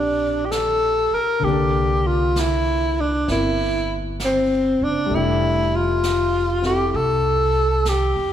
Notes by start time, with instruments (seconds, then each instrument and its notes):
Already playing: upright bass A#1, grand piano F3 G3 A#3 C4 G4 D5, tenor saxophone D4
0.45 tenor saxophone G4
0.51 tenor saxophone A4, brush sweep, snare, hi-hat pedal
1.13 tenor saxophone A#4, muted upright bass stroke
1.40 upright bass C2, grand piano D3 A#3, brush sweep
1.44 grand piano D4, tenor saxophone G4
1.51 grand piano A4
2.07 tenor saxophone F4
2.36 tenor saxophone E4, brush sweep, snare, hi-hat pedal
3.00 tenor saxophone D4
3.28 upright bass G1, grand piano C4 E4 A#4, tenor saxophone E4, brush sweep, snare
4.20 brush sweep, snare, hi-hat pedal
4.24 tenor saxophone C4
4.81 upright bass F#1, tenor saxophone D4
5.06 grand piano G3 A3
5.11 upright bass F1, grand piano D4, brush sweep
5.15 tenor saxophone E4, grand piano G4
5.76 tenor saxophone F4
6.03 brush sweep, snare, hi-hat pedal
6.62 grand piano C4 E4 A4, snare
6.66 tenor saxophone G4
6.91 upright bass C2, tenor saxophone G4, brush sweep
6.95 tenor saxophone A4
7.85 tenor saxophone G4, brush sweep, snare, hi-hat pedal
8.16 upright bass F2